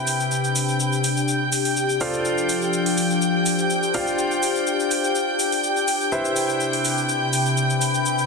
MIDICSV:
0, 0, Header, 1, 5, 480
1, 0, Start_track
1, 0, Key_signature, 0, "major"
1, 0, Tempo, 483871
1, 311, Time_signature, 4, 2, 24, 8
1, 8196, End_track
2, 0, Start_track
2, 0, Title_t, "Violin section"
2, 0, Program_c, 0, 48
2, 0, Note_on_c, 0, 79, 77
2, 0, Note_on_c, 0, 91, 73
2, 8196, Note_off_c, 0, 79, 0
2, 8196, Note_off_c, 0, 91, 0
2, 8196, End_track
3, 0, Start_track
3, 0, Title_t, "Grand piano"
3, 0, Program_c, 1, 0
3, 0, Note_on_c, 1, 64, 69
3, 0, Note_on_c, 1, 67, 59
3, 0, Note_on_c, 1, 71, 58
3, 0, Note_on_c, 1, 72, 64
3, 0, Note_on_c, 1, 76, 72
3, 1965, Note_off_c, 1, 64, 0
3, 1965, Note_off_c, 1, 67, 0
3, 1965, Note_off_c, 1, 71, 0
3, 1965, Note_off_c, 1, 72, 0
3, 1965, Note_off_c, 1, 76, 0
3, 1992, Note_on_c, 1, 65, 69
3, 1992, Note_on_c, 1, 69, 64
3, 1992, Note_on_c, 1, 72, 65
3, 1992, Note_on_c, 1, 74, 65
3, 1992, Note_on_c, 1, 77, 77
3, 3885, Note_off_c, 1, 65, 0
3, 3885, Note_off_c, 1, 69, 0
3, 3885, Note_off_c, 1, 72, 0
3, 3885, Note_off_c, 1, 74, 0
3, 3885, Note_off_c, 1, 77, 0
3, 3912, Note_on_c, 1, 65, 72
3, 3912, Note_on_c, 1, 67, 61
3, 3912, Note_on_c, 1, 72, 63
3, 3912, Note_on_c, 1, 74, 67
3, 3912, Note_on_c, 1, 77, 80
3, 6045, Note_off_c, 1, 65, 0
3, 6045, Note_off_c, 1, 67, 0
3, 6045, Note_off_c, 1, 72, 0
3, 6045, Note_off_c, 1, 74, 0
3, 6045, Note_off_c, 1, 77, 0
3, 6072, Note_on_c, 1, 64, 67
3, 6072, Note_on_c, 1, 67, 60
3, 6072, Note_on_c, 1, 71, 62
3, 6072, Note_on_c, 1, 72, 65
3, 6072, Note_on_c, 1, 76, 74
3, 8196, Note_off_c, 1, 64, 0
3, 8196, Note_off_c, 1, 67, 0
3, 8196, Note_off_c, 1, 71, 0
3, 8196, Note_off_c, 1, 72, 0
3, 8196, Note_off_c, 1, 76, 0
3, 8196, End_track
4, 0, Start_track
4, 0, Title_t, "Ambient pad"
4, 0, Program_c, 2, 92
4, 0, Note_on_c, 2, 48, 69
4, 0, Note_on_c, 2, 62, 76
4, 0, Note_on_c, 2, 67, 81
4, 0, Note_on_c, 2, 83, 83
4, 1992, Note_off_c, 2, 48, 0
4, 1992, Note_off_c, 2, 83, 0
4, 1992, Note_on_c, 2, 53, 81
4, 2861, Note_on_c, 2, 72, 67
4, 3912, Note_off_c, 2, 53, 0
4, 6072, Note_off_c, 2, 72, 0
4, 6073, Note_on_c, 2, 48, 82
4, 7280, Note_on_c, 2, 83, 80
4, 8196, Note_off_c, 2, 48, 0
4, 8196, Note_off_c, 2, 62, 0
4, 8196, Note_off_c, 2, 67, 0
4, 8196, Note_off_c, 2, 83, 0
4, 8196, End_track
5, 0, Start_track
5, 0, Title_t, "Drums"
5, 72, Note_on_c, 9, 46, 90
5, 72, Note_on_c, 9, 69, 67
5, 171, Note_off_c, 9, 46, 0
5, 171, Note_off_c, 9, 69, 0
5, 199, Note_on_c, 9, 69, 29
5, 299, Note_off_c, 9, 69, 0
5, 312, Note_on_c, 9, 69, 40
5, 411, Note_off_c, 9, 69, 0
5, 439, Note_on_c, 9, 69, 28
5, 539, Note_off_c, 9, 69, 0
5, 552, Note_on_c, 9, 46, 90
5, 552, Note_on_c, 9, 69, 64
5, 651, Note_off_c, 9, 46, 0
5, 651, Note_off_c, 9, 69, 0
5, 680, Note_on_c, 9, 69, 29
5, 779, Note_off_c, 9, 69, 0
5, 792, Note_on_c, 9, 69, 42
5, 892, Note_off_c, 9, 69, 0
5, 919, Note_on_c, 9, 69, 27
5, 1018, Note_off_c, 9, 69, 0
5, 1032, Note_on_c, 9, 46, 95
5, 1032, Note_on_c, 9, 69, 64
5, 1131, Note_off_c, 9, 46, 0
5, 1131, Note_off_c, 9, 69, 0
5, 1160, Note_on_c, 9, 69, 29
5, 1259, Note_off_c, 9, 69, 0
5, 1272, Note_on_c, 9, 69, 40
5, 1371, Note_off_c, 9, 69, 0
5, 1512, Note_on_c, 9, 46, 96
5, 1512, Note_on_c, 9, 69, 67
5, 1611, Note_off_c, 9, 46, 0
5, 1611, Note_off_c, 9, 69, 0
5, 1639, Note_on_c, 9, 46, 58
5, 1639, Note_on_c, 9, 69, 28
5, 1738, Note_off_c, 9, 46, 0
5, 1738, Note_off_c, 9, 69, 0
5, 1752, Note_on_c, 9, 69, 37
5, 1851, Note_off_c, 9, 69, 0
5, 1879, Note_on_c, 9, 69, 28
5, 1978, Note_off_c, 9, 69, 0
5, 1992, Note_on_c, 9, 46, 98
5, 1992, Note_on_c, 9, 69, 64
5, 2091, Note_off_c, 9, 46, 0
5, 2091, Note_off_c, 9, 69, 0
5, 2119, Note_on_c, 9, 69, 27
5, 2219, Note_off_c, 9, 69, 0
5, 2232, Note_on_c, 9, 69, 40
5, 2331, Note_off_c, 9, 69, 0
5, 2359, Note_on_c, 9, 69, 27
5, 2459, Note_off_c, 9, 69, 0
5, 2472, Note_on_c, 9, 46, 95
5, 2472, Note_on_c, 9, 69, 64
5, 2571, Note_off_c, 9, 46, 0
5, 2571, Note_off_c, 9, 69, 0
5, 2599, Note_on_c, 9, 69, 28
5, 2698, Note_off_c, 9, 69, 0
5, 2712, Note_on_c, 9, 69, 38
5, 2811, Note_off_c, 9, 69, 0
5, 2839, Note_on_c, 9, 46, 59
5, 2938, Note_off_c, 9, 46, 0
5, 2951, Note_on_c, 9, 46, 96
5, 2952, Note_on_c, 9, 69, 64
5, 3051, Note_off_c, 9, 46, 0
5, 3051, Note_off_c, 9, 69, 0
5, 3079, Note_on_c, 9, 69, 30
5, 3178, Note_off_c, 9, 69, 0
5, 3192, Note_on_c, 9, 69, 37
5, 3291, Note_off_c, 9, 69, 0
5, 3432, Note_on_c, 9, 46, 97
5, 3432, Note_on_c, 9, 69, 66
5, 3531, Note_off_c, 9, 46, 0
5, 3531, Note_off_c, 9, 69, 0
5, 3559, Note_on_c, 9, 69, 29
5, 3658, Note_off_c, 9, 69, 0
5, 3672, Note_on_c, 9, 69, 39
5, 3771, Note_off_c, 9, 69, 0
5, 3799, Note_on_c, 9, 69, 27
5, 3898, Note_off_c, 9, 69, 0
5, 3912, Note_on_c, 9, 46, 96
5, 3912, Note_on_c, 9, 69, 62
5, 4011, Note_off_c, 9, 46, 0
5, 4011, Note_off_c, 9, 69, 0
5, 4039, Note_on_c, 9, 69, 28
5, 4138, Note_off_c, 9, 69, 0
5, 4152, Note_on_c, 9, 69, 40
5, 4252, Note_off_c, 9, 69, 0
5, 4279, Note_on_c, 9, 69, 28
5, 4378, Note_off_c, 9, 69, 0
5, 4392, Note_on_c, 9, 46, 95
5, 4392, Note_on_c, 9, 69, 64
5, 4491, Note_off_c, 9, 46, 0
5, 4492, Note_off_c, 9, 69, 0
5, 4520, Note_on_c, 9, 69, 28
5, 4619, Note_off_c, 9, 69, 0
5, 4632, Note_on_c, 9, 69, 41
5, 4732, Note_off_c, 9, 69, 0
5, 4759, Note_on_c, 9, 69, 27
5, 4859, Note_off_c, 9, 69, 0
5, 4872, Note_on_c, 9, 46, 92
5, 4872, Note_on_c, 9, 69, 67
5, 4971, Note_off_c, 9, 46, 0
5, 4971, Note_off_c, 9, 69, 0
5, 5000, Note_on_c, 9, 69, 29
5, 5099, Note_off_c, 9, 69, 0
5, 5112, Note_on_c, 9, 69, 39
5, 5211, Note_off_c, 9, 69, 0
5, 5352, Note_on_c, 9, 46, 95
5, 5352, Note_on_c, 9, 69, 68
5, 5451, Note_off_c, 9, 46, 0
5, 5451, Note_off_c, 9, 69, 0
5, 5479, Note_on_c, 9, 46, 57
5, 5479, Note_on_c, 9, 69, 30
5, 5578, Note_off_c, 9, 46, 0
5, 5579, Note_off_c, 9, 69, 0
5, 5592, Note_on_c, 9, 69, 39
5, 5692, Note_off_c, 9, 69, 0
5, 5720, Note_on_c, 9, 69, 27
5, 5819, Note_off_c, 9, 69, 0
5, 5832, Note_on_c, 9, 46, 94
5, 5832, Note_on_c, 9, 69, 67
5, 5931, Note_off_c, 9, 46, 0
5, 5931, Note_off_c, 9, 69, 0
5, 5960, Note_on_c, 9, 69, 27
5, 6059, Note_off_c, 9, 69, 0
5, 6072, Note_on_c, 9, 69, 40
5, 6172, Note_off_c, 9, 69, 0
5, 6199, Note_on_c, 9, 69, 29
5, 6299, Note_off_c, 9, 69, 0
5, 6312, Note_on_c, 9, 46, 90
5, 6312, Note_on_c, 9, 69, 68
5, 6411, Note_off_c, 9, 46, 0
5, 6411, Note_off_c, 9, 69, 0
5, 6439, Note_on_c, 9, 69, 30
5, 6538, Note_off_c, 9, 69, 0
5, 6552, Note_on_c, 9, 69, 42
5, 6651, Note_off_c, 9, 69, 0
5, 6679, Note_on_c, 9, 46, 55
5, 6778, Note_off_c, 9, 46, 0
5, 6792, Note_on_c, 9, 46, 96
5, 6792, Note_on_c, 9, 69, 69
5, 6891, Note_off_c, 9, 46, 0
5, 6891, Note_off_c, 9, 69, 0
5, 6919, Note_on_c, 9, 69, 29
5, 7019, Note_off_c, 9, 69, 0
5, 7032, Note_on_c, 9, 69, 38
5, 7131, Note_off_c, 9, 69, 0
5, 7272, Note_on_c, 9, 46, 91
5, 7272, Note_on_c, 9, 69, 74
5, 7371, Note_off_c, 9, 46, 0
5, 7371, Note_off_c, 9, 69, 0
5, 7399, Note_on_c, 9, 69, 31
5, 7499, Note_off_c, 9, 69, 0
5, 7512, Note_on_c, 9, 69, 40
5, 7612, Note_off_c, 9, 69, 0
5, 7640, Note_on_c, 9, 69, 29
5, 7739, Note_off_c, 9, 69, 0
5, 7752, Note_on_c, 9, 46, 92
5, 7752, Note_on_c, 9, 69, 65
5, 7851, Note_off_c, 9, 46, 0
5, 7851, Note_off_c, 9, 69, 0
5, 7879, Note_on_c, 9, 69, 29
5, 7979, Note_off_c, 9, 69, 0
5, 7993, Note_on_c, 9, 69, 43
5, 8092, Note_off_c, 9, 69, 0
5, 8120, Note_on_c, 9, 69, 30
5, 8196, Note_off_c, 9, 69, 0
5, 8196, End_track
0, 0, End_of_file